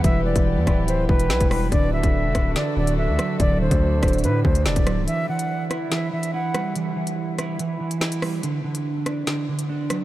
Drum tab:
HH |x-----x-----x---x-----x---x-o---|x-----x-----x---x-----x-----x---|x-----x-----xxxxx-----x---x-x---|x-----x-----x---x-----x-----x---|
SD |------------r-----------o---r---|------------r---o-----------r---|------------r-----------o---r---|------------r---o-----------r---|
BD |o-----o-----o-------o-----o-----|o-----o-----o-------------------|o-----o-----o-------o-----o-----|--------------------------------|

HH |x-----x-----x---x-----x---x-o---|x-----x-----x---x-----x-----x---|
SD |------------r-----------o---r---|------------r---o-----------r---|
BD |--------------------------------|--------------------------------|